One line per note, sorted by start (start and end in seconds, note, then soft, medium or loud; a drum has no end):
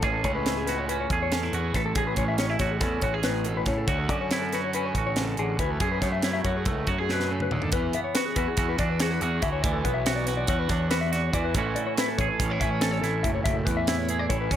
0.00 0.24 A1 loud
0.00 1.74 A2 medium
0.00 0.25 A3 medium
0.00 0.47 E4 medium
0.00 0.68 G#4 medium
0.00 0.13 C#5 medium
0.00 kick loud
0.00 closed hi-hat medium
0.13 0.24 A4 medium
0.24 1.06 C#2 medium
0.24 0.91 C#4 medium
0.24 0.35 C#5 medium
0.24 kick medium
0.24 closed hi-hat medium
0.35 0.56 B4 medium
0.46 1.33 E4 medium
0.46 snare loud
0.46 closed hi-hat medium
0.57 0.67 G#4 medium
0.67 1.11 F#4 medium
0.67 0.78 B4 medium
0.67 snare soft
0.67 closed hi-hat medium
0.78 0.88 C#5 medium
0.89 1.33 C#4 medium
0.89 0.99 B4 medium
0.89 closed hi-hat medium
1.00 1.11 C#5 medium
1.10 1.49 E2 medium
1.10 1.54 G#4 medium
1.10 1.21 A4 medium
1.10 kick medium
1.10 closed hi-hat medium
1.22 1.34 C#5 medium
1.32 1.43 C#4 medium
1.32 1.55 A4 medium
1.32 snare loud
1.32 closed hi-hat medium
1.43 1.96 E4 soft
1.53 1.72 E2 medium
1.53 1.75 F#4 medium
1.53 1.75 G#4 medium
1.53 closed hi-hat medium
1.74 1.93 A1 medium
1.74 1.93 A2 medium
1.74 1.97 A4 medium
1.74 1.85 B4 medium
1.74 kick medium
1.74 snare soft
1.74 closed hi-hat medium
1.86 1.96 A4 medium
1.95 2.15 A1 medium
1.95 3.24 A2 medium
1.95 2.07 G#4 medium
1.95 2.61 G#4 medium
1.95 kick loud
1.95 closed hi-hat medium
2.07 2.17 B4 medium
2.16 2.56 A1 medium
2.16 2.39 C#4 medium
2.16 2.28 C#5 medium
2.16 kick medium
2.16 closed hi-hat medium
2.28 2.39 E5 medium
2.38 2.50 C#4 medium
2.38 2.50 C#5 medium
2.38 snare loud
2.38 closed hi-hat medium
2.50 3.89 E4 soft
2.50 2.60 E5 medium
2.59 2.81 A1 medium
2.59 3.02 F#4 medium
2.59 2.71 C#5 medium
2.59 kick medium
2.59 snare soft
2.59 closed hi-hat medium
2.71 2.80 G#4 medium
2.80 3.00 E2 medium
2.80 3.91 C#4 medium
2.80 3.02 A4 medium
2.80 kick loud
2.80 snare soft
2.80 closed hi-hat medium
3.01 3.63 A1 medium
3.01 3.14 F#4 medium
3.01 3.13 C#5 medium
3.01 kick medium
3.01 closed hi-hat medium
3.14 3.24 G#4 medium
3.14 3.88 G#4 soft
3.23 3.46 A2 medium
3.23 3.46 B4 medium
3.23 snare loud
3.23 closed hi-hat medium
3.45 3.67 B2 medium
3.45 3.56 A4 medium
3.45 closed hi-hat medium
3.57 3.67 B4 medium
3.66 3.86 A2 medium
3.66 3.87 C#3 medium
3.66 3.78 C#5 medium
3.66 kick medium
3.66 snare soft
3.66 closed hi-hat medium
3.78 3.88 A4 medium
3.87 4.09 D2 loud
3.87 5.17 D3 medium
3.87 4.54 F#4 medium
3.87 3.99 C#5 medium
3.87 kick loud
3.87 closed hi-hat medium
3.99 4.09 A4 medium
4.09 4.91 F#2 medium
4.09 4.76 C#4 medium
4.09 4.20 D5 medium
4.09 kick medium
4.09 closed hi-hat medium
4.21 4.42 C#5 medium
4.31 5.84 E4 medium
4.31 snare loud
4.31 closed hi-hat medium
4.42 4.52 A4 medium
4.53 4.97 F#4 medium
4.53 4.64 B4 medium
4.53 snare soft
4.53 closed hi-hat medium
4.64 4.74 C#5 medium
4.73 5.79 C#4 medium
4.73 4.86 B4 medium
4.73 closed hi-hat medium
4.86 4.96 C#5 medium
4.95 5.34 A1 medium
4.95 5.81 F#4 medium
4.95 5.06 A4 medium
4.95 kick medium
4.95 closed hi-hat medium
5.07 5.17 C#5 medium
5.16 5.39 C#3 medium
5.16 5.38 A4 medium
5.16 snare loud
5.16 closed hi-hat medium
5.37 5.57 A1 medium
5.37 5.60 D3 medium
5.37 5.59 G#4 medium
5.37 closed hi-hat soft
5.59 5.78 D2 medium
5.59 5.81 E3 medium
5.59 5.71 B4 medium
5.59 kick medium
5.59 closed hi-hat medium
5.71 5.81 A4 medium
5.80 6.00 F#2 medium
5.80 7.73 F#2 medium
5.80 5.91 G#4 medium
5.80 6.45 G#4 medium
5.80 kick loud
5.80 closed hi-hat medium
5.92 6.02 B4 medium
6.01 6.41 F#2 medium
6.01 6.66 A3 medium
6.01 6.12 C#5 medium
6.01 kick medium
6.01 snare soft
6.01 closed hi-hat medium
6.12 6.23 E5 medium
6.22 7.71 E4 medium
6.22 6.33 C#5 medium
6.22 snare loud
6.22 closed hi-hat medium
6.33 6.44 E5 medium
6.44 6.67 F#2 medium
6.44 6.86 F#4 medium
6.44 6.55 C#5 medium
6.44 kick medium
6.44 closed hi-hat medium
6.57 6.67 G#4 medium
6.65 6.85 C#2 medium
6.65 7.73 A3 medium
6.65 6.89 A4 medium
6.65 kick medium
6.65 closed hi-hat medium
6.87 7.47 F#2 medium
6.87 6.98 F#4 medium
6.87 6.99 C#5 medium
6.87 kick medium
6.87 closed hi-hat medium
6.98 7.73 G#4 soft
6.98 7.11 G#4 medium
7.09 7.31 B2 medium
7.09 7.31 B4 medium
7.09 snare medium
7.20 snare soft
7.31 7.52 C#3 medium
7.31 7.41 A4 medium
7.40 7.53 B4 medium
7.40 mid tom medium
7.51 7.71 D#2 medium
7.51 7.73 D3 medium
7.51 7.63 C#5 medium
7.51 mid tom medium
7.62 7.73 A4 medium
7.62 floor tom medium
7.72 7.92 E2 medium
7.72 9.42 E3 medium
7.72 7.94 B4 medium
7.72 kick loud
7.72 closed hi-hat medium
7.93 9.63 B3 medium
7.93 8.04 E5 medium
7.93 closed hi-hat medium
8.04 8.15 C#5 medium
8.14 8.38 F#4 medium
8.14 8.26 B4 medium
8.14 snare loud
8.14 closed hi-hat loud
8.26 8.37 G#4 medium
8.36 8.46 E2 medium
8.36 8.58 F#4 medium
8.36 8.47 B4 medium
8.36 kick medium
8.36 closed hi-hat medium
8.48 8.69 G#4 medium
8.57 8.77 E2 loud
8.57 9.02 F#4 medium
8.57 kick loud
8.57 closed hi-hat medium
8.69 8.79 B4 medium
8.78 9.17 E2 medium
8.78 9.62 D4 medium
8.78 8.90 D5 medium
8.78 kick medium
8.78 closed hi-hat medium
8.90 9.00 B4 medium
9.00 9.22 F#4 medium
9.00 9.11 G#4 medium
9.00 snare loud
9.00 closed hi-hat medium
9.11 9.21 B4 medium
9.21 9.41 E2 medium
9.21 10.06 F#4 medium
9.21 9.43 G#4 medium
9.21 closed hi-hat medium
9.42 9.62 D2 medium
9.42 9.64 E3 medium
9.42 9.52 E5 medium
9.42 kick medium
9.42 closed hi-hat medium
9.52 9.62 C#5 medium
9.62 9.83 D2 medium
9.62 11.33 E3 medium
9.62 9.74 D5 medium
9.62 kick loud
9.62 closed hi-hat medium
9.73 9.84 A4 medium
9.84 10.45 B1 medium
9.84 11.52 B3 medium
9.84 9.96 B4 medium
9.84 kick medium
9.84 closed hi-hat medium
9.94 10.16 E5 medium
10.06 10.28 F#4 medium
10.06 snare loud
10.06 closed hi-hat medium
10.16 10.26 D5 medium
10.26 10.49 F#4 medium
10.26 10.37 B4 medium
10.26 snare soft
10.26 closed hi-hat medium
10.37 10.48 D5 medium
10.47 10.68 E2 medium
10.47 10.91 F#4 medium
10.47 10.59 C#5 medium
10.47 kick loud
10.47 closed hi-hat medium
10.59 10.70 B4 medium
10.69 11.29 E2 medium
10.69 11.53 D4 medium
10.69 10.90 C#5 medium
10.69 kick medium
10.69 snare soft
10.69 closed hi-hat medium
10.91 11.12 F#4 medium
10.91 11.01 B4 medium
10.91 snare loud
10.91 closed hi-hat medium
11.01 11.12 E5 medium
11.12 11.58 F#4 medium
11.12 11.23 D5 medium
11.12 snare soft
11.12 closed hi-hat medium
11.23 11.33 C#5 medium
11.33 11.53 E2 medium
11.33 11.56 E3 medium
11.33 11.45 D5 medium
11.33 kick medium
11.33 closed hi-hat medium
11.44 11.54 B4 medium
11.54 11.74 A1 loud
11.54 13.23 A2 medium
11.54 11.76 E3 medium
11.54 12.40 C#4 medium
11.54 11.98 E4 medium
11.54 12.20 F#4 medium
11.54 11.76 A4 medium
11.54 kick loud
11.54 closed hi-hat loud
11.76 13.65 E3 medium
11.76 11.86 D5 medium
11.76 closed hi-hat medium
11.87 11.97 C#5 medium
11.98 12.40 E4 medium
11.98 12.08 B4 medium
11.98 snare loud
11.98 closed hi-hat loud
12.08 12.19 A4 medium
12.18 12.28 A1 medium
12.18 12.83 G#4 medium
12.18 12.29 C#5 medium
12.18 kick medium
12.18 closed hi-hat medium
12.29 12.50 A4 medium
12.40 12.59 A1 loud
12.40 12.51 C#4 medium
12.40 kick loud
12.40 closed hi-hat loud
12.50 13.02 E4 medium
12.50 12.60 C#5 medium
12.60 12.99 A1 medium
12.60 14.50 C#4 medium
12.60 12.70 E5 medium
12.60 kick medium
12.60 closed hi-hat medium
12.70 12.82 C#5 medium
12.81 12.91 A4 medium
12.81 14.10 A4 medium
12.81 snare loud
12.81 closed hi-hat medium
12.91 13.01 C#5 medium
13.01 13.22 A1 medium
13.01 13.88 E4 medium
13.01 13.24 A4 medium
13.01 snare soft
13.01 closed hi-hat medium
13.23 13.44 F#1 medium
13.23 13.43 A2 medium
13.23 13.34 E5 medium
13.23 kick medium
13.23 closed hi-hat medium
13.35 13.44 C#5 medium
13.44 13.65 F#1 medium
13.44 14.56 A2 medium
13.44 13.56 E5 medium
13.44 kick loud
13.44 closed hi-hat medium
13.54 13.65 A4 medium
13.65 14.26 E2 medium
13.65 14.56 E3 medium
13.65 13.77 B4 medium
13.65 kick medium
13.65 closed hi-hat medium
13.77 13.98 E5 medium
13.87 14.30 E4 medium
13.87 snare loud
13.87 closed hi-hat medium
13.98 14.09 C#5 medium
14.09 14.56 G#4 medium
14.09 14.19 B4 medium
14.09 closed hi-hat medium
14.19 14.29 D5 medium
14.29 14.49 A1 medium
14.29 14.56 E4 medium
14.29 14.40 C#5 medium
14.29 kick loud
14.29 closed hi-hat medium
14.40 14.51 B4 medium
14.50 14.56 A1 medium
14.50 14.56 C#4 medium
14.50 14.56 C#5 medium
14.50 kick medium
14.50 closed hi-hat medium